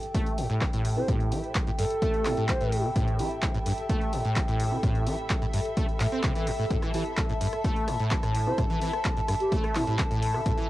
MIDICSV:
0, 0, Header, 1, 7, 480
1, 0, Start_track
1, 0, Key_signature, 0, "minor"
1, 0, Tempo, 468750
1, 1108, Time_signature, 4, 2, 24, 8
1, 10956, End_track
2, 0, Start_track
2, 0, Title_t, "Analog synth pad"
2, 0, Program_c, 0, 89
2, 0, Note_on_c, 0, 79, 88
2, 6869, Note_on_c, 0, 81, 84
2, 6878, Note_off_c, 0, 79, 0
2, 10956, Note_off_c, 0, 81, 0
2, 10956, End_track
3, 0, Start_track
3, 0, Title_t, "Ambient pad"
3, 0, Program_c, 1, 92
3, 0, Note_on_c, 1, 69, 86
3, 0, Note_on_c, 1, 76, 98
3, 102, Note_on_c, 1, 83, 89
3, 10956, Note_off_c, 1, 69, 0
3, 10956, Note_off_c, 1, 76, 0
3, 10956, Note_off_c, 1, 83, 0
3, 10956, End_track
4, 0, Start_track
4, 0, Title_t, "Flute"
4, 0, Program_c, 2, 73
4, 990, Note_on_c, 2, 72, 89
4, 1115, Note_off_c, 2, 72, 0
4, 1828, Note_on_c, 2, 69, 101
4, 2501, Note_off_c, 2, 69, 0
4, 2548, Note_on_c, 2, 72, 93
4, 2909, Note_off_c, 2, 72, 0
4, 8670, Note_on_c, 2, 72, 90
4, 8795, Note_off_c, 2, 72, 0
4, 9629, Note_on_c, 2, 67, 93
4, 9755, Note_off_c, 2, 67, 0
4, 9988, Note_on_c, 2, 64, 96
4, 10066, Note_off_c, 2, 64, 0
4, 10110, Note_on_c, 2, 64, 80
4, 10186, Note_off_c, 2, 64, 0
4, 10956, End_track
5, 0, Start_track
5, 0, Title_t, "Synth stab"
5, 0, Program_c, 3, 62
5, 989, Note_on_c, 3, 60, 86
5, 989, Note_on_c, 3, 64, 80
5, 989, Note_on_c, 3, 67, 78
5, 989, Note_on_c, 3, 69, 98
5, 1086, Note_off_c, 3, 60, 0
5, 1086, Note_off_c, 3, 64, 0
5, 1086, Note_off_c, 3, 67, 0
5, 1086, Note_off_c, 3, 69, 0
5, 1348, Note_on_c, 3, 60, 73
5, 1348, Note_on_c, 3, 64, 71
5, 1348, Note_on_c, 3, 67, 66
5, 1348, Note_on_c, 3, 69, 83
5, 1410, Note_off_c, 3, 60, 0
5, 1410, Note_off_c, 3, 64, 0
5, 1410, Note_off_c, 3, 67, 0
5, 1410, Note_off_c, 3, 69, 0
5, 2308, Note_on_c, 3, 60, 79
5, 2308, Note_on_c, 3, 64, 72
5, 2308, Note_on_c, 3, 67, 76
5, 2308, Note_on_c, 3, 69, 90
5, 2407, Note_off_c, 3, 60, 0
5, 2407, Note_off_c, 3, 64, 0
5, 2407, Note_off_c, 3, 67, 0
5, 2407, Note_off_c, 3, 69, 0
5, 3268, Note_on_c, 3, 60, 83
5, 3268, Note_on_c, 3, 64, 79
5, 3268, Note_on_c, 3, 67, 79
5, 3268, Note_on_c, 3, 69, 92
5, 3367, Note_off_c, 3, 60, 0
5, 3367, Note_off_c, 3, 64, 0
5, 3367, Note_off_c, 3, 67, 0
5, 3367, Note_off_c, 3, 69, 0
5, 4829, Note_on_c, 3, 60, 86
5, 4829, Note_on_c, 3, 64, 78
5, 4829, Note_on_c, 3, 67, 80
5, 4829, Note_on_c, 3, 69, 94
5, 4926, Note_off_c, 3, 60, 0
5, 4926, Note_off_c, 3, 64, 0
5, 4926, Note_off_c, 3, 67, 0
5, 4926, Note_off_c, 3, 69, 0
5, 5188, Note_on_c, 3, 60, 75
5, 5188, Note_on_c, 3, 67, 68
5, 5189, Note_on_c, 3, 64, 70
5, 5189, Note_on_c, 3, 69, 82
5, 5250, Note_off_c, 3, 60, 0
5, 5250, Note_off_c, 3, 64, 0
5, 5250, Note_off_c, 3, 67, 0
5, 5250, Note_off_c, 3, 69, 0
5, 7108, Note_on_c, 3, 60, 85
5, 7108, Note_on_c, 3, 64, 76
5, 7108, Note_on_c, 3, 67, 79
5, 7108, Note_on_c, 3, 69, 94
5, 7206, Note_off_c, 3, 60, 0
5, 7206, Note_off_c, 3, 67, 0
5, 7206, Note_off_c, 3, 69, 0
5, 7207, Note_off_c, 3, 64, 0
5, 8669, Note_on_c, 3, 60, 88
5, 8669, Note_on_c, 3, 64, 79
5, 8669, Note_on_c, 3, 67, 80
5, 8669, Note_on_c, 3, 69, 99
5, 8766, Note_off_c, 3, 60, 0
5, 8766, Note_off_c, 3, 64, 0
5, 8766, Note_off_c, 3, 67, 0
5, 8766, Note_off_c, 3, 69, 0
5, 9028, Note_on_c, 3, 60, 76
5, 9028, Note_on_c, 3, 64, 68
5, 9028, Note_on_c, 3, 67, 68
5, 9028, Note_on_c, 3, 69, 84
5, 9089, Note_off_c, 3, 60, 0
5, 9090, Note_off_c, 3, 64, 0
5, 9090, Note_off_c, 3, 67, 0
5, 9090, Note_off_c, 3, 69, 0
5, 9988, Note_on_c, 3, 60, 83
5, 9988, Note_on_c, 3, 64, 75
5, 9988, Note_on_c, 3, 67, 73
5, 9988, Note_on_c, 3, 69, 87
5, 10086, Note_off_c, 3, 60, 0
5, 10086, Note_off_c, 3, 64, 0
5, 10086, Note_off_c, 3, 67, 0
5, 10086, Note_off_c, 3, 69, 0
5, 10956, End_track
6, 0, Start_track
6, 0, Title_t, "Acid bass"
6, 0, Program_c, 4, 38
6, 148, Note_on_c, 4, 57, 84
6, 388, Note_on_c, 4, 45, 79
6, 404, Note_off_c, 4, 57, 0
6, 488, Note_off_c, 4, 45, 0
6, 509, Note_on_c, 4, 45, 77
6, 629, Note_on_c, 4, 57, 98
6, 644, Note_off_c, 4, 45, 0
6, 668, Note_off_c, 4, 57, 0
6, 750, Note_on_c, 4, 45, 80
6, 990, Note_on_c, 4, 48, 79
6, 1005, Note_off_c, 4, 45, 0
6, 1055, Note_off_c, 4, 48, 0
6, 1108, Note_on_c, 4, 45, 82
6, 1349, Note_on_c, 4, 52, 75
6, 1364, Note_off_c, 4, 45, 0
6, 1448, Note_off_c, 4, 52, 0
6, 1709, Note_on_c, 4, 45, 75
6, 1749, Note_off_c, 4, 45, 0
6, 1828, Note_on_c, 4, 43, 76
6, 1895, Note_off_c, 4, 43, 0
6, 2068, Note_on_c, 4, 57, 82
6, 2308, Note_on_c, 4, 45, 79
6, 2324, Note_off_c, 4, 57, 0
6, 2408, Note_off_c, 4, 45, 0
6, 2430, Note_on_c, 4, 45, 78
6, 2549, Note_on_c, 4, 57, 103
6, 2564, Note_off_c, 4, 45, 0
6, 2588, Note_off_c, 4, 57, 0
6, 2670, Note_on_c, 4, 45, 78
6, 2910, Note_on_c, 4, 48, 79
6, 2925, Note_off_c, 4, 45, 0
6, 2975, Note_off_c, 4, 48, 0
6, 3028, Note_on_c, 4, 45, 81
6, 3269, Note_on_c, 4, 52, 76
6, 3284, Note_off_c, 4, 45, 0
6, 3368, Note_off_c, 4, 52, 0
6, 3629, Note_on_c, 4, 45, 75
6, 3669, Note_off_c, 4, 45, 0
6, 3748, Note_on_c, 4, 43, 80
6, 3815, Note_off_c, 4, 43, 0
6, 3988, Note_on_c, 4, 57, 83
6, 4228, Note_on_c, 4, 45, 79
6, 4243, Note_off_c, 4, 57, 0
6, 4328, Note_off_c, 4, 45, 0
6, 4349, Note_on_c, 4, 45, 80
6, 4468, Note_on_c, 4, 57, 98
6, 4483, Note_off_c, 4, 45, 0
6, 4508, Note_off_c, 4, 57, 0
6, 4589, Note_on_c, 4, 45, 75
6, 4829, Note_on_c, 4, 48, 78
6, 4844, Note_off_c, 4, 45, 0
6, 4895, Note_off_c, 4, 48, 0
6, 4948, Note_on_c, 4, 45, 81
6, 5188, Note_on_c, 4, 52, 77
6, 5203, Note_off_c, 4, 45, 0
6, 5288, Note_off_c, 4, 52, 0
6, 5549, Note_on_c, 4, 45, 73
6, 5588, Note_off_c, 4, 45, 0
6, 5668, Note_on_c, 4, 43, 77
6, 5735, Note_off_c, 4, 43, 0
6, 5908, Note_on_c, 4, 57, 83
6, 6008, Note_off_c, 4, 57, 0
6, 6148, Note_on_c, 4, 45, 101
6, 6215, Note_off_c, 4, 45, 0
6, 6269, Note_on_c, 4, 60, 75
6, 6367, Note_off_c, 4, 60, 0
6, 6388, Note_on_c, 4, 48, 84
6, 6488, Note_off_c, 4, 48, 0
6, 6509, Note_on_c, 4, 52, 78
6, 6628, Note_on_c, 4, 43, 77
6, 6643, Note_off_c, 4, 52, 0
6, 6668, Note_off_c, 4, 43, 0
6, 6749, Note_on_c, 4, 45, 76
6, 6815, Note_off_c, 4, 45, 0
6, 6868, Note_on_c, 4, 45, 84
6, 6935, Note_off_c, 4, 45, 0
6, 6989, Note_on_c, 4, 52, 80
6, 7087, Note_off_c, 4, 52, 0
6, 7108, Note_on_c, 4, 52, 75
6, 7208, Note_off_c, 4, 52, 0
6, 7469, Note_on_c, 4, 45, 74
6, 7508, Note_off_c, 4, 45, 0
6, 7588, Note_on_c, 4, 43, 80
6, 7655, Note_off_c, 4, 43, 0
6, 7828, Note_on_c, 4, 57, 84
6, 8068, Note_on_c, 4, 45, 81
6, 8083, Note_off_c, 4, 57, 0
6, 8168, Note_off_c, 4, 45, 0
6, 8189, Note_on_c, 4, 45, 80
6, 8308, Note_on_c, 4, 57, 99
6, 8323, Note_off_c, 4, 45, 0
6, 8348, Note_off_c, 4, 57, 0
6, 8429, Note_on_c, 4, 45, 75
6, 8669, Note_on_c, 4, 48, 81
6, 8685, Note_off_c, 4, 45, 0
6, 8735, Note_off_c, 4, 48, 0
6, 8788, Note_on_c, 4, 45, 85
6, 8855, Note_off_c, 4, 45, 0
6, 8909, Note_on_c, 4, 52, 77
6, 9007, Note_off_c, 4, 52, 0
6, 9028, Note_on_c, 4, 52, 74
6, 9128, Note_off_c, 4, 52, 0
6, 9389, Note_on_c, 4, 45, 77
6, 9428, Note_off_c, 4, 45, 0
6, 9508, Note_on_c, 4, 43, 82
6, 9575, Note_off_c, 4, 43, 0
6, 9747, Note_on_c, 4, 57, 84
6, 9988, Note_on_c, 4, 45, 78
6, 10003, Note_off_c, 4, 57, 0
6, 10088, Note_off_c, 4, 45, 0
6, 10109, Note_on_c, 4, 45, 77
6, 10228, Note_on_c, 4, 57, 102
6, 10243, Note_off_c, 4, 45, 0
6, 10268, Note_off_c, 4, 57, 0
6, 10349, Note_on_c, 4, 45, 78
6, 10589, Note_on_c, 4, 48, 79
6, 10605, Note_off_c, 4, 45, 0
6, 10655, Note_off_c, 4, 48, 0
6, 10708, Note_on_c, 4, 45, 84
6, 10775, Note_off_c, 4, 45, 0
6, 10829, Note_on_c, 4, 52, 78
6, 10927, Note_off_c, 4, 52, 0
6, 10956, End_track
7, 0, Start_track
7, 0, Title_t, "Drums"
7, 30, Note_on_c, 9, 42, 55
7, 132, Note_off_c, 9, 42, 0
7, 148, Note_on_c, 9, 36, 121
7, 149, Note_on_c, 9, 42, 79
7, 251, Note_off_c, 9, 36, 0
7, 251, Note_off_c, 9, 42, 0
7, 270, Note_on_c, 9, 42, 39
7, 372, Note_off_c, 9, 42, 0
7, 389, Note_on_c, 9, 46, 107
7, 491, Note_off_c, 9, 46, 0
7, 510, Note_on_c, 9, 42, 38
7, 612, Note_off_c, 9, 42, 0
7, 625, Note_on_c, 9, 39, 126
7, 628, Note_on_c, 9, 36, 119
7, 629, Note_on_c, 9, 42, 84
7, 727, Note_off_c, 9, 39, 0
7, 731, Note_off_c, 9, 36, 0
7, 731, Note_off_c, 9, 42, 0
7, 750, Note_on_c, 9, 42, 58
7, 852, Note_off_c, 9, 42, 0
7, 868, Note_on_c, 9, 46, 103
7, 971, Note_off_c, 9, 46, 0
7, 1108, Note_on_c, 9, 36, 126
7, 1108, Note_on_c, 9, 42, 86
7, 1211, Note_off_c, 9, 36, 0
7, 1211, Note_off_c, 9, 42, 0
7, 1230, Note_on_c, 9, 42, 36
7, 1332, Note_off_c, 9, 42, 0
7, 1348, Note_on_c, 9, 46, 109
7, 1451, Note_off_c, 9, 46, 0
7, 1470, Note_on_c, 9, 42, 39
7, 1572, Note_off_c, 9, 42, 0
7, 1585, Note_on_c, 9, 39, 127
7, 1588, Note_on_c, 9, 36, 124
7, 1589, Note_on_c, 9, 42, 84
7, 1687, Note_off_c, 9, 39, 0
7, 1691, Note_off_c, 9, 36, 0
7, 1691, Note_off_c, 9, 42, 0
7, 1710, Note_on_c, 9, 42, 37
7, 1812, Note_off_c, 9, 42, 0
7, 1828, Note_on_c, 9, 46, 115
7, 1931, Note_off_c, 9, 46, 0
7, 1950, Note_on_c, 9, 42, 53
7, 2052, Note_off_c, 9, 42, 0
7, 2068, Note_on_c, 9, 36, 123
7, 2068, Note_on_c, 9, 42, 79
7, 2171, Note_off_c, 9, 36, 0
7, 2171, Note_off_c, 9, 42, 0
7, 2190, Note_on_c, 9, 42, 36
7, 2292, Note_off_c, 9, 42, 0
7, 2305, Note_on_c, 9, 39, 62
7, 2308, Note_on_c, 9, 46, 111
7, 2407, Note_off_c, 9, 39, 0
7, 2411, Note_off_c, 9, 46, 0
7, 2430, Note_on_c, 9, 42, 38
7, 2532, Note_off_c, 9, 42, 0
7, 2544, Note_on_c, 9, 39, 127
7, 2548, Note_on_c, 9, 36, 127
7, 2548, Note_on_c, 9, 42, 80
7, 2647, Note_off_c, 9, 39, 0
7, 2651, Note_off_c, 9, 36, 0
7, 2651, Note_off_c, 9, 42, 0
7, 2670, Note_on_c, 9, 42, 55
7, 2772, Note_off_c, 9, 42, 0
7, 2789, Note_on_c, 9, 46, 106
7, 2891, Note_off_c, 9, 46, 0
7, 3028, Note_on_c, 9, 36, 127
7, 3028, Note_on_c, 9, 42, 81
7, 3130, Note_off_c, 9, 42, 0
7, 3131, Note_off_c, 9, 36, 0
7, 3149, Note_on_c, 9, 42, 35
7, 3252, Note_off_c, 9, 42, 0
7, 3268, Note_on_c, 9, 46, 114
7, 3370, Note_off_c, 9, 46, 0
7, 3390, Note_on_c, 9, 42, 38
7, 3492, Note_off_c, 9, 42, 0
7, 3504, Note_on_c, 9, 39, 122
7, 3508, Note_on_c, 9, 36, 121
7, 3508, Note_on_c, 9, 42, 78
7, 3607, Note_off_c, 9, 39, 0
7, 3610, Note_off_c, 9, 42, 0
7, 3611, Note_off_c, 9, 36, 0
7, 3629, Note_on_c, 9, 42, 37
7, 3732, Note_off_c, 9, 42, 0
7, 3748, Note_on_c, 9, 46, 114
7, 3851, Note_off_c, 9, 46, 0
7, 3870, Note_on_c, 9, 42, 51
7, 3972, Note_off_c, 9, 42, 0
7, 3988, Note_on_c, 9, 36, 126
7, 3988, Note_on_c, 9, 42, 73
7, 4091, Note_off_c, 9, 36, 0
7, 4091, Note_off_c, 9, 42, 0
7, 4109, Note_on_c, 9, 42, 36
7, 4212, Note_off_c, 9, 42, 0
7, 4228, Note_on_c, 9, 46, 110
7, 4330, Note_off_c, 9, 46, 0
7, 4349, Note_on_c, 9, 42, 37
7, 4452, Note_off_c, 9, 42, 0
7, 4464, Note_on_c, 9, 39, 126
7, 4468, Note_on_c, 9, 36, 125
7, 4468, Note_on_c, 9, 42, 77
7, 4566, Note_off_c, 9, 39, 0
7, 4570, Note_off_c, 9, 42, 0
7, 4571, Note_off_c, 9, 36, 0
7, 4589, Note_on_c, 9, 42, 53
7, 4692, Note_off_c, 9, 42, 0
7, 4708, Note_on_c, 9, 46, 109
7, 4810, Note_off_c, 9, 46, 0
7, 4948, Note_on_c, 9, 36, 127
7, 4948, Note_on_c, 9, 42, 75
7, 5050, Note_off_c, 9, 42, 0
7, 5051, Note_off_c, 9, 36, 0
7, 5069, Note_on_c, 9, 42, 35
7, 5172, Note_off_c, 9, 42, 0
7, 5188, Note_on_c, 9, 46, 112
7, 5290, Note_off_c, 9, 46, 0
7, 5309, Note_on_c, 9, 42, 37
7, 5411, Note_off_c, 9, 42, 0
7, 5424, Note_on_c, 9, 39, 124
7, 5428, Note_on_c, 9, 36, 123
7, 5428, Note_on_c, 9, 42, 76
7, 5526, Note_off_c, 9, 39, 0
7, 5530, Note_off_c, 9, 42, 0
7, 5531, Note_off_c, 9, 36, 0
7, 5549, Note_on_c, 9, 42, 35
7, 5651, Note_off_c, 9, 42, 0
7, 5667, Note_on_c, 9, 46, 118
7, 5770, Note_off_c, 9, 46, 0
7, 5789, Note_on_c, 9, 42, 50
7, 5891, Note_off_c, 9, 42, 0
7, 5907, Note_on_c, 9, 42, 72
7, 5908, Note_on_c, 9, 36, 124
7, 6010, Note_off_c, 9, 42, 0
7, 6011, Note_off_c, 9, 36, 0
7, 6029, Note_on_c, 9, 42, 35
7, 6131, Note_off_c, 9, 42, 0
7, 6143, Note_on_c, 9, 39, 61
7, 6147, Note_on_c, 9, 46, 112
7, 6246, Note_off_c, 9, 39, 0
7, 6250, Note_off_c, 9, 46, 0
7, 6269, Note_on_c, 9, 42, 36
7, 6371, Note_off_c, 9, 42, 0
7, 6384, Note_on_c, 9, 39, 116
7, 6388, Note_on_c, 9, 36, 126
7, 6388, Note_on_c, 9, 42, 78
7, 6486, Note_off_c, 9, 39, 0
7, 6490, Note_off_c, 9, 42, 0
7, 6491, Note_off_c, 9, 36, 0
7, 6509, Note_on_c, 9, 42, 53
7, 6611, Note_off_c, 9, 42, 0
7, 6627, Note_on_c, 9, 46, 104
7, 6730, Note_off_c, 9, 46, 0
7, 6868, Note_on_c, 9, 36, 125
7, 6868, Note_on_c, 9, 42, 77
7, 6970, Note_off_c, 9, 42, 0
7, 6971, Note_off_c, 9, 36, 0
7, 6989, Note_on_c, 9, 37, 59
7, 6989, Note_on_c, 9, 42, 35
7, 7091, Note_off_c, 9, 37, 0
7, 7091, Note_off_c, 9, 42, 0
7, 7108, Note_on_c, 9, 46, 108
7, 7210, Note_off_c, 9, 46, 0
7, 7229, Note_on_c, 9, 42, 36
7, 7331, Note_off_c, 9, 42, 0
7, 7344, Note_on_c, 9, 39, 119
7, 7348, Note_on_c, 9, 36, 120
7, 7348, Note_on_c, 9, 37, 60
7, 7348, Note_on_c, 9, 42, 78
7, 7447, Note_off_c, 9, 39, 0
7, 7450, Note_off_c, 9, 37, 0
7, 7450, Note_off_c, 9, 42, 0
7, 7451, Note_off_c, 9, 36, 0
7, 7469, Note_on_c, 9, 42, 35
7, 7572, Note_off_c, 9, 42, 0
7, 7588, Note_on_c, 9, 46, 114
7, 7690, Note_off_c, 9, 46, 0
7, 7710, Note_on_c, 9, 37, 60
7, 7710, Note_on_c, 9, 42, 51
7, 7812, Note_off_c, 9, 37, 0
7, 7812, Note_off_c, 9, 42, 0
7, 7828, Note_on_c, 9, 36, 121
7, 7828, Note_on_c, 9, 42, 75
7, 7930, Note_off_c, 9, 42, 0
7, 7931, Note_off_c, 9, 36, 0
7, 7949, Note_on_c, 9, 42, 36
7, 8052, Note_off_c, 9, 42, 0
7, 8068, Note_on_c, 9, 37, 60
7, 8068, Note_on_c, 9, 46, 106
7, 8170, Note_off_c, 9, 37, 0
7, 8170, Note_off_c, 9, 46, 0
7, 8189, Note_on_c, 9, 42, 37
7, 8291, Note_off_c, 9, 42, 0
7, 8304, Note_on_c, 9, 39, 113
7, 8307, Note_on_c, 9, 42, 78
7, 8308, Note_on_c, 9, 36, 122
7, 8406, Note_off_c, 9, 39, 0
7, 8410, Note_off_c, 9, 42, 0
7, 8411, Note_off_c, 9, 36, 0
7, 8429, Note_on_c, 9, 37, 62
7, 8429, Note_on_c, 9, 42, 51
7, 8531, Note_off_c, 9, 37, 0
7, 8531, Note_off_c, 9, 42, 0
7, 8547, Note_on_c, 9, 46, 102
7, 8650, Note_off_c, 9, 46, 0
7, 8788, Note_on_c, 9, 36, 122
7, 8788, Note_on_c, 9, 37, 66
7, 8788, Note_on_c, 9, 42, 81
7, 8890, Note_off_c, 9, 37, 0
7, 8890, Note_off_c, 9, 42, 0
7, 8891, Note_off_c, 9, 36, 0
7, 8909, Note_on_c, 9, 42, 35
7, 9011, Note_off_c, 9, 42, 0
7, 9028, Note_on_c, 9, 46, 103
7, 9130, Note_off_c, 9, 46, 0
7, 9149, Note_on_c, 9, 37, 65
7, 9149, Note_on_c, 9, 42, 38
7, 9252, Note_off_c, 9, 37, 0
7, 9252, Note_off_c, 9, 42, 0
7, 9264, Note_on_c, 9, 39, 119
7, 9268, Note_on_c, 9, 36, 116
7, 9268, Note_on_c, 9, 42, 81
7, 9366, Note_off_c, 9, 39, 0
7, 9370, Note_off_c, 9, 42, 0
7, 9371, Note_off_c, 9, 36, 0
7, 9389, Note_on_c, 9, 42, 38
7, 9491, Note_off_c, 9, 42, 0
7, 9508, Note_on_c, 9, 37, 64
7, 9508, Note_on_c, 9, 46, 108
7, 9610, Note_off_c, 9, 37, 0
7, 9610, Note_off_c, 9, 46, 0
7, 9629, Note_on_c, 9, 42, 53
7, 9732, Note_off_c, 9, 42, 0
7, 9748, Note_on_c, 9, 36, 117
7, 9748, Note_on_c, 9, 42, 76
7, 9850, Note_off_c, 9, 42, 0
7, 9851, Note_off_c, 9, 36, 0
7, 9869, Note_on_c, 9, 37, 62
7, 9869, Note_on_c, 9, 42, 36
7, 9972, Note_off_c, 9, 37, 0
7, 9972, Note_off_c, 9, 42, 0
7, 9984, Note_on_c, 9, 39, 59
7, 9988, Note_on_c, 9, 46, 104
7, 10086, Note_off_c, 9, 39, 0
7, 10090, Note_off_c, 9, 46, 0
7, 10109, Note_on_c, 9, 42, 38
7, 10211, Note_off_c, 9, 42, 0
7, 10224, Note_on_c, 9, 39, 119
7, 10228, Note_on_c, 9, 36, 119
7, 10228, Note_on_c, 9, 37, 62
7, 10228, Note_on_c, 9, 42, 78
7, 10326, Note_off_c, 9, 39, 0
7, 10330, Note_off_c, 9, 37, 0
7, 10330, Note_off_c, 9, 42, 0
7, 10331, Note_off_c, 9, 36, 0
7, 10349, Note_on_c, 9, 42, 55
7, 10452, Note_off_c, 9, 42, 0
7, 10468, Note_on_c, 9, 46, 99
7, 10570, Note_off_c, 9, 46, 0
7, 10589, Note_on_c, 9, 37, 62
7, 10691, Note_off_c, 9, 37, 0
7, 10708, Note_on_c, 9, 36, 116
7, 10708, Note_on_c, 9, 42, 87
7, 10810, Note_off_c, 9, 42, 0
7, 10811, Note_off_c, 9, 36, 0
7, 10829, Note_on_c, 9, 42, 37
7, 10932, Note_off_c, 9, 42, 0
7, 10956, End_track
0, 0, End_of_file